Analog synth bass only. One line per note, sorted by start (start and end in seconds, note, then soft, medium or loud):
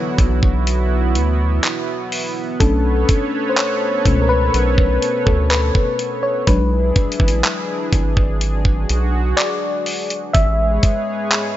0.19 1.17 B1 medium
1.15 1.60 D2 medium
2.61 3.05 B1 loud
4.06 4.50 C#2 medium
4.54 4.99 B1 loud
5.27 5.71 D2 loud
6.48 6.92 B1 loud
7.20 7.42 A1 medium
7.93 8.86 G#1 medium
8.90 9.34 B1 medium
10.35 10.79 A1 loud